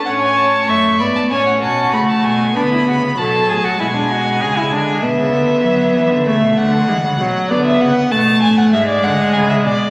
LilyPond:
<<
  \new Staff \with { instrumentName = "Violin" } { \time 4/4 \key a \mixolydian \tempo 4 = 97 fis''16 gis''16 a''8 cis'''8 b''16 a''16 gis''16 fis''16 a''8 b''16 a''16 gis''8 | b''4 a''4 gis''2 | e''2 e''8 fis''4. | d''16 e''16 fis''8 a''8 gis''16 fis''16 e''16 d''16 fis''8 gis''16 e''16 d''8 | }
  \new Staff \with { instrumentName = "Violin" } { \time 4/4 \key a \mixolydian cis''4 e''8 d''8 cis''8 fis'4. | d'16 e'16 fis'8 a'8 gis'16 fis'16 e'16 d'16 fis'8 gis'16 e'16 d'8 | r1 | r1 | }
  \new Staff \with { instrumentName = "Viola" } { \time 4/4 \key a \mixolydian cis'4 a8 b8 cis'4 a4 | b4 fis4 gis2 | b2 a4 gis8 fis8 | b4 a4 gis2 | }
  \new Staff \with { instrumentName = "Cello" } { \clef bass \time 4/4 \key a \mixolydian a,4 fis,8 gis,8 a,8 b,8 cis8 b,8 | d8 cis8 b,8 a,8 b,4 cis8 d8 | b,16 cis16 d8 fis8 e16 d16 cis16 b,16 d8 e16 cis16 b,8 | d8 cis8 b,8 a,8 gis,8 d8 cis8 b,8 | }
>>